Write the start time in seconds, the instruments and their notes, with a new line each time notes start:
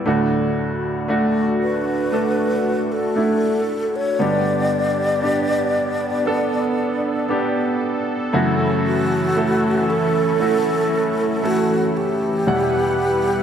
0.06 upright piano D2 A2 A3 D4 F#4, analog synth pad A3 D4 F#4
1.08 upright piano A3 D4 F#4
1.63 alto flute B4
2.12 upright piano A3 D4 A4
2.92 alto flute A4
3.16 upright piano A3 D4 E4
3.96 alto flute C#5
4.19 upright piano G2 D3 B3 D4 G4, analog synth pad B3 D4 G4, alto flute D5
5.22 upright piano B3 D4 G4
6.26 upright piano B3 D4 A4, analog synth pad A4
7.29 upright piano B3 D4 G4
8.33 upright piano F#2 C#3 A3 E4 F#4, analog synth pad E3 A3 C#4 E4
8.86 alto flute F#4
9.36 upright piano A3 E4 A4
9.90 alto flute A4
10.39 upright piano A3 E4 F#4
11.43 upright piano A3 E4 A4, alto flute F#4
11.97 alto flute G4
12.46 upright piano E2 B2 G3 E4 F#5, analog synth pad G3 B3 E4 B4 F#5